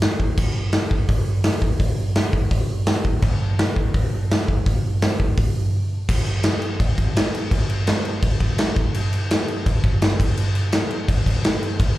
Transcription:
0.01 snare loud
0.01 open hi-hat medium
0.20 kick medium
0.38 kick loud
0.38 crash medium
0.72 snare loud
0.72 open hi-hat medium
0.91 kick medium
1.09 kick loud
1.09 open hi-hat medium
1.43 snare loud
1.43 open hi-hat medium
1.62 kick medium
1.80 kick loud
1.80 open hi-hat medium
2.15 snare loud
2.15 open hi-hat medium
2.33 kick medium
2.51 kick loud
2.51 open hi-hat medium
2.86 snare loud
2.86 open hi-hat medium
3.05 kick medium
3.22 kick loud
3.22 crash medium
3.59 snare loud
3.59 open hi-hat medium
3.76 kick medium
3.94 kick loud
3.94 open hi-hat medium
4.31 snare loud
4.31 open hi-hat medium
4.48 kick medium
4.66 kick loud
4.66 open hi-hat medium
5.02 snare loud
5.02 open hi-hat medium
5.20 kick medium
5.37 kick loud
5.37 open hi-hat medium
6.09 kick loud
6.09 crash loud
6.09 crash medium
6.26 crash medium
6.43 snare loud
6.43 crash medium
6.62 crash medium
6.80 kick loud
6.80 crash medium
6.98 kick medium
6.98 crash medium
7.16 snare loud
7.16 crash medium
7.34 crash medium
7.51 kick loud
7.51 crash medium
7.69 crash medium
7.87 snare loud
7.87 crash medium
8.05 crash medium
8.23 kick loud
8.23 crash medium
8.40 kick medium
8.40 crash medium
8.58 snare loud
8.58 crash medium
8.76 kick loud
8.76 crash medium
8.94 crash medium
9.13 crash medium
9.31 snare loud
9.31 crash medium
9.48 crash medium
9.66 kick loud
9.66 crash medium
9.84 kick loud
9.84 crash medium
10.02 snare loud
10.02 crash medium
10.20 kick loud
10.20 crash loud
10.37 crash medium
10.55 crash medium
10.72 snare loud
10.72 crash medium
10.90 crash medium
11.08 kick loud
11.08 crash loud
11.26 kick medium
11.26 crash medium
11.44 snare loud
11.44 crash medium
11.63 crash medium
11.80 kick loud
11.80 crash medium

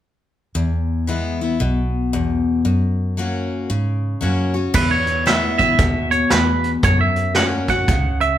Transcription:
0.55 1.56 E2 medium
0.55 1.38 E2 medium
1.07 1.39 E3 soft
1.07 1.40 G#3 medium
1.07 1.40 B3 medium
1.07 1.40 E4 medium
1.41 1.61 B3 soft
1.41 1.60 E4 medium
1.60 2.43 B1 medium
1.60 2.61 B2 medium
2.13 2.63 E2 medium
2.65 3.66 F#2 medium
2.65 3.48 F#2 medium
3.17 3.68 F#3 soft
3.17 3.68 A#3 medium
3.17 3.69 C#4 medium
3.17 3.69 F#4 medium
3.70 4.14 G#2 medium
3.70 4.71 C#3 medium
4.21 4.67 F#2 medium
4.21 4.53 F#3 medium
4.21 4.54 A#3 medium
4.21 4.54 C#4 medium
4.21 4.53 F#4 medium
4.54 4.74 C#4 soft
4.54 4.73 F#4 soft
4.74 5.75 E2 medium
4.74 5.57 E2 medium
4.74 4.90 B4 medium
4.74 kick loud
4.74 crash medium
4.91 5.24 C#5 medium
5.06 closed hi-hat medium
5.26 5.58 E3 medium
5.26 5.58 G#3 soft
5.26 5.59 B3 medium
5.26 5.58 E4 medium
5.26 5.57 E5 medium
5.26 snare loud
5.26 closed hi-hat medium
5.58 5.79 B3 soft
5.58 5.78 E4 soft
5.58 6.11 E5 medium
5.58 kick medium
5.58 closed hi-hat medium
5.78 6.23 D#2 medium
5.78 6.80 B2 medium
5.78 kick loud
5.78 closed hi-hat medium
6.11 6.32 C#5 medium
6.11 closed hi-hat medium
6.30 6.76 E2 medium
6.30 6.82 E2 medium
6.30 6.71 B4 medium
6.30 snare loud
6.30 closed hi-hat medium
6.64 closed hi-hat medium
6.83 7.66 F#2 medium
6.83 7.85 F#2 medium
6.83 7.00 C#5 medium
6.83 kick loud
6.83 closed hi-hat medium
7.01 7.34 E5 medium
7.16 closed hi-hat medium
7.35 7.67 F#3 medium
7.35 7.68 A#3 medium
7.35 7.68 C#4 medium
7.35 7.68 F#4 medium
7.35 7.45 F#5 medium
7.35 snare loud
7.35 closed hi-hat medium
7.68 7.89 C#4 soft
7.68 7.88 F#4 medium
7.68 8.18 F#5 medium
7.68 kick medium
7.68 closed hi-hat medium
7.88 8.38 C#2 medium
7.88 8.38 C#3 medium
7.88 kick loud
7.88 closed hi-hat medium
8.21 8.38 E5 medium
8.21 closed hi-hat medium

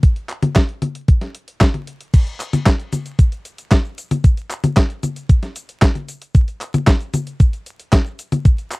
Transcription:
0.03 kick loud
0.03 closed hi-hat medium
0.16 closed hi-hat soft
0.29 clap medium
0.29 closed hi-hat medium
0.42 closed hi-hat medium
0.42 high tom medium
0.56 kick loud
0.56 snare loud
0.56 clap medium
0.56 closed hi-hat medium
0.69 closed hi-hat soft
0.82 closed hi-hat medium
0.82 high tom medium
0.95 closed hi-hat medium
1.08 kick loud
1.08 closed hi-hat medium
1.21 snare soft
1.21 closed hi-hat soft
1.35 closed hi-hat medium
1.48 closed hi-hat medium
1.61 kick loud
1.61 snare loud
1.61 clap medium
1.61 closed hi-hat medium
1.74 closed hi-hat soft
1.74 high tom medium
1.87 closed hi-hat medium
2.00 closed hi-hat soft
2.14 kick loud
2.14 closed hi-hat medium
2.14 crash loud
2.14 cabasa soft
2.27 closed hi-hat soft
2.27 cabasa soft
2.40 clap medium
2.40 closed hi-hat medium
2.40 cabasa medium
2.53 closed hi-hat medium
2.53 high tom medium
2.53 cabasa soft
2.66 kick loud
2.66 snare loud
2.66 clap medium
2.66 closed hi-hat medium
2.66 cabasa soft
2.80 closed hi-hat soft
2.80 cabasa soft
2.93 closed hi-hat medium
2.93 high tom medium
2.93 cabasa medium
3.06 closed hi-hat medium
3.06 cabasa soft
3.19 kick loud
3.19 closed hi-hat medium
3.19 cabasa soft
3.32 closed hi-hat soft
3.32 cabasa soft
3.45 closed hi-hat medium
3.45 cabasa medium
3.58 closed hi-hat medium
3.58 cabasa soft
3.71 kick loud
3.71 snare loud
3.71 clap medium
3.71 closed hi-hat medium
3.71 cabasa soft
3.85 cabasa soft
3.98 closed hi-hat medium
3.98 cabasa medium
4.11 closed hi-hat medium
4.11 high tom medium
4.11 cabasa soft
4.24 kick loud
4.24 closed hi-hat medium
4.24 cabasa soft
4.37 closed hi-hat soft
4.37 cabasa soft
4.50 clap medium
4.50 closed hi-hat medium
4.50 cabasa medium
4.64 closed hi-hat medium
4.64 high tom medium
4.64 cabasa soft
4.77 kick loud
4.77 snare loud
4.77 clap loud
4.77 closed hi-hat medium
4.77 cabasa soft
4.90 closed hi-hat soft
4.90 cabasa soft
5.03 closed hi-hat medium
5.03 high tom medium
5.03 cabasa medium
5.16 closed hi-hat medium
5.16 cabasa soft
5.29 kick loud
5.29 closed hi-hat medium
5.29 cabasa soft
5.43 snare soft
5.43 closed hi-hat soft
5.43 cabasa soft
5.56 closed hi-hat medium
5.56 cabasa medium
5.69 closed hi-hat medium
5.69 cabasa soft
5.82 kick loud
5.82 snare loud
5.82 clap loud
5.82 closed hi-hat medium
5.82 cabasa soft
5.95 closed hi-hat soft
5.95 high tom medium
5.95 cabasa soft
6.08 closed hi-hat medium
6.08 cabasa medium
6.22 closed hi-hat medium
6.22 cabasa soft
6.35 kick loud
6.35 closed hi-hat medium
6.35 cabasa soft
6.48 closed hi-hat soft
6.48 cabasa soft
6.61 clap medium
6.61 closed hi-hat medium
6.61 cabasa medium
6.74 closed hi-hat medium
6.74 high tom medium
6.74 cabasa soft
6.87 kick loud
6.87 snare loud
6.87 clap medium
6.87 closed hi-hat medium
6.87 cabasa soft
7.01 closed hi-hat soft
7.01 cabasa soft
7.14 closed hi-hat medium
7.14 high tom medium
7.14 cabasa medium
7.27 closed hi-hat medium
7.27 cabasa soft
7.40 kick loud
7.40 closed hi-hat medium
7.40 cabasa soft
7.53 closed hi-hat soft
7.53 cabasa soft
7.66 closed hi-hat medium
7.66 cabasa medium
7.79 closed hi-hat medium
7.79 cabasa soft
7.93 kick loud
7.93 snare loud
7.93 clap medium
7.93 closed hi-hat medium
7.93 cabasa soft
8.06 cabasa soft
8.19 closed hi-hat medium
8.19 cabasa medium
8.32 closed hi-hat medium
8.32 high tom medium
8.32 cabasa soft
8.45 kick loud
8.45 closed hi-hat medium
8.45 cabasa soft
8.58 closed hi-hat soft
8.58 cabasa soft
8.71 clap medium
8.71 closed hi-hat medium
8.71 cabasa medium

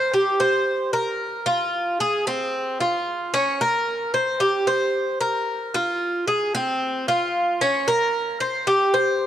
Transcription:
0.00 0.12 C5 medium
0.14 0.39 G4 medium
0.40 0.92 C5 medium
0.93 1.45 A#4 medium
1.46 1.98 F4 medium
2.00 2.26 G#4 medium
2.27 2.79 C4 medium
2.81 3.32 F4 medium
3.34 3.60 C#4 medium
3.61 4.13 A#4 medium
4.14 4.40 C5 medium
4.40 4.66 G4 medium
4.67 5.19 C5 medium
5.21 5.73 A#4 medium
5.74 6.26 F4 medium
6.28 6.54 G#4 medium
6.55 7.06 C4 medium
7.08 7.60 F4 medium
7.61 7.87 C#4 medium
7.88 8.40 A#4 medium
8.40 8.67 C5 medium
8.67 8.94 G4 medium
8.94 9.27 C5 medium

